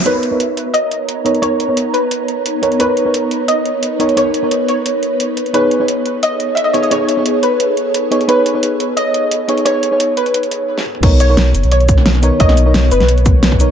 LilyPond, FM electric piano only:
\new Staff \with { instrumentName = "FM electric piano" } { \time 4/4 \key b \major \tempo 4 = 175 <b dis' ais' cis''>8. <b dis' ais' cis''>8 r2 r16 <b dis' ais' cis''>8 | <b dis' ais' cis''>8. <b dis' ais' cis''>8 r2 r16 <b dis' ais' cis''>8 | <b dis' ais' cis''>8. <b dis' ais' cis''>8 r2 r16 <b dis' ais' cis''>8 | <b dis' ais' cis''>8. <b dis' ais' cis''>8 r2 r8. |
<b dis' gis' cis''>8. <b dis' gis' cis''>8 r2 r16 <b dis' gis' cis''>8 | <b dis' gis' cis''>8. <b dis' gis' cis''>8 r2 r16 <b dis' gis' cis''>8 | <b dis' gis' cis''>8. <b dis' gis' cis''>8 r2 r16 <b dis' gis' cis''>8 | <b dis' gis' cis''>8. <b dis' gis' cis''>8 r2 r8. |
<b dis' ais' cis''>8. <b dis' ais' cis''>8 r2 r16 <b dis' ais' cis''>8 | <b dis' ais' cis''>8. <b dis' ais' cis''>8 r2 r16 <b dis' ais' cis''>8 | }